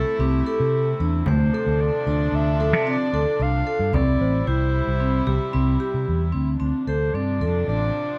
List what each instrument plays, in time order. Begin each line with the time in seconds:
Already playing: string section C3 A3 E4, vibraphone A4, clarinet A4
0.19 fingered electric bass C2, vibraphone C4, clarinet G4
0.46 clarinet G4, vibraphone A4
0.60 fingered electric bass C3
1.00 fingered electric bass E2, vibraphone D4
1.26 fingered electric bass D2, string section F3 D4, vibraphone A3, clarinet C5, frame drum
1.53 celesta A4, vibraphone A4
1.67 fingered electric bass D2
1.80 clarinet D5, frame drum
2.07 fingered electric bass D2, vibraphone D4
2.32 fingered electric bass D2, clarinet E5
2.60 vibraphone A4, frame drum
2.73 fingered electric bass C3
2.87 vibraphone C4, clarinet D5
3.13 fingered electric bass D2, vibraphone A4
3.40 fingered electric bass C2, vibraphone D4, clarinet F5
3.67 vibraphone A4
3.79 fingered electric bass G2
3.92 fingered electric bass C2, string section C3 G3 E4, vibraphone C4, clarinet D5, frame drum
4.20 fingered electric bass A1, celesta C5
4.47 fingered electric bass C2, vibraphone E4, clarinet C5
4.87 fingered electric bass C2
5.00 vibraphone C4
5.27 fingered electric bass C2, vibraphone G4, frame drum
5.53 fingered electric bass C2, vibraphone C4
5.80 vibraphone G4
5.94 fingered electric bass C3
6.08 fingered electric bass E2
6.32 fingered electric bass D2, vibraphone C4
6.60 fingered electric bass D2, string section C3 F3 D4, vibraphone C4
6.87 fingered electric bass D2, vibraphone A4, clarinet C5
7.13 fingered electric bass G2, vibraphone C4, clarinet D5
7.40 fingered electric bass F2, vibraphone A4
7.68 fingered electric bass A1, vibraphone D4, clarinet D5